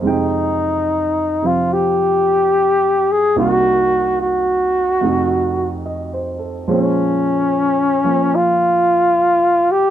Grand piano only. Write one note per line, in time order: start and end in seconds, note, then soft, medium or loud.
0.00 3.35 F2 soft
0.00 1.40 C3 soft
0.00 0.21 C5 soft
0.04 3.37 G#3 soft
0.04 3.36 D#4 soft
0.04 3.38 G5 soft
1.42 3.35 C3 soft
1.42 3.37 F3 soft
1.42 3.37 C4 soft
1.42 3.38 F4 soft
3.36 5.02 C2 soft
3.36 5.00 C3 soft
3.36 5.02 A#3 soft
3.36 5.02 D#4 soft
3.36 5.02 F#4 soft
5.01 6.66 F2 soft
5.01 6.66 C3 soft
5.01 6.67 A3 soft
5.01 6.68 D#4 soft
5.06 6.68 F#4 soft
5.86 6.37 D#5 soft
6.14 6.55 C5 soft
6.39 6.82 A4 soft
6.67 9.90 A#2 soft
6.67 8.03 F3 soft
6.67 9.90 G#3 soft
6.67 9.90 C#4 soft
6.67 9.90 C5 soft
8.04 9.90 F3 soft
8.04 9.90 A#3 soft